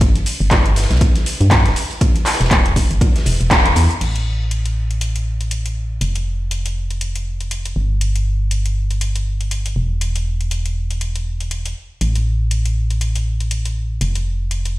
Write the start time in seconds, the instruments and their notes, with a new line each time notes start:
Already playing: fm bass G1
0.01 kick, closed hi-hat, ride, shaker
0.16 closed hi-hat, shaker
0.26 open hi-hat, ride, shaker
0.40 fm bass G1, shaker
0.51 kick, snare, clap, closed hi-hat, ride, shaker
0.66 closed hi-hat, shaker
0.76 snare, open hi-hat, ride, shaker
0.83 snare, ride
0.90 fm bass B1, snare, closed hi-hat, ride, shaker
0.95 snare, ride
1.01 kick, closed hi-hat, ride, shaker
1.15 snare, closed hi-hat, shaker
1.26 open hi-hat, ride, shaker
1.41 fm bass G2, closed hi-hat, shaker
1.51 kick, snare, clap, closed hi-hat, ride, shaker
1.66 fm bass D1, snare, closed hi-hat, shaker
1.76 open hi-hat, ride, shaker
1.90 ride, shaker
2.01 kick, closed hi-hat, ride, shaker
2.16 closed hi-hat, ride, shaker
2.25 snare, clap, open hi-hat, ride, shaker
2.34 snare, ride
2.41 fm bass E1, snare, closed hi-hat, ride, shaker
2.46 snare, ride
2.51 kick, snare, clap, closed hi-hat, ride, shaker
2.66 closed hi-hat, shaker
2.76 kick, open hi-hat, ride, shaker
2.91 fm bass G1, closed hi-hat, shaker
3.01 kick, closed hi-hat, ride, shaker
3.16 snare, closed hi-hat, shaker
3.26 fm bass E1, snare, open hi-hat, ride, shaker
3.41 fm bass E1, closed hi-hat, shaker
3.51 kick, snare, clap, closed hi-hat, ride, shaker
3.65 closed hi-hat, ride, shaker
3.76 fm bass E2, open hi-hat, ride, shaker
3.91 closed hi-hat, shaker
4.01 fm bass A1, closed hi-hat, crash
4.16 closed hi-hat
4.51 closed hi-hat
4.66 closed hi-hat
4.91 closed hi-hat
5.01 closed hi-hat
5.16 closed hi-hat
5.41 closed hi-hat
5.51 closed hi-hat
5.66 closed hi-hat
6.01 fm bass F1, closed hi-hat
6.16 closed hi-hat
6.51 closed hi-hat
6.66 closed hi-hat
6.91 closed hi-hat
7.01 closed hi-hat
7.16 closed hi-hat
7.41 closed hi-hat
7.51 closed hi-hat
7.66 closed hi-hat
7.76 fm bass G1
8.01 closed hi-hat
8.16 closed hi-hat
8.51 closed hi-hat
8.66 closed hi-hat
8.91 closed hi-hat
9.01 closed hi-hat
9.16 closed hi-hat
9.41 closed hi-hat
9.51 closed hi-hat
9.66 closed hi-hat
9.76 fm bass E1
10.01 closed hi-hat
10.16 closed hi-hat
10.41 closed hi-hat
10.51 closed hi-hat
10.66 closed hi-hat
10.90 closed hi-hat
11.01 closed hi-hat
11.16 closed hi-hat
11.40 closed hi-hat
11.51 closed hi-hat
11.66 closed hi-hat
12.01 fm bass A1, closed hi-hat
12.15 closed hi-hat
12.51 closed hi-hat
12.65 closed hi-hat
12.90 closed hi-hat
13.01 closed hi-hat
13.15 closed hi-hat
13.40 closed hi-hat
13.51 closed hi-hat
13.65 closed hi-hat
14.01 fm bass F1, closed hi-hat
14.15 closed hi-hat
14.51 closed hi-hat
14.65 closed hi-hat